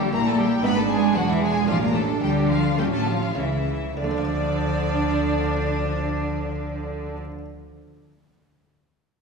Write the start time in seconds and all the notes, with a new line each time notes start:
Already playing: G1 G2 G3 A#3 E4 G4
0.12 A#1 A#2 A#3 E4 A#4 A#5
0.25 A3 A4 A5
0.37 G3 G4 G5
0.63 G#1 G#2 B3 D4 E4 B4 B5
0.76 A3 A4 A5
0.89 G#3 G#4 G#5
1.14 E1 E2 F#3 F#4 F#5
1.28 E3 E4 E5
1.41 G#3 G#4 G#5
1.67 A1 A2 F3 A3 D4 F4 F5
1.80 A#3 A#4 A#5
1.94 A3 A4 A5
2.21 D2 D3 G3 G4 G5
2.49 F3 F4 F5
2.77 A1 A2 G3 C#4 E4 G4 G5
2.92 A3 A4 A5
3.06 F3 F4 F5
3.35 C#2 C#3 E3 C#4 E4 E5
3.97 D2 D3 F3 D4 D5
4.04 A3
4.11 D4
4.18 F4
4.25 D5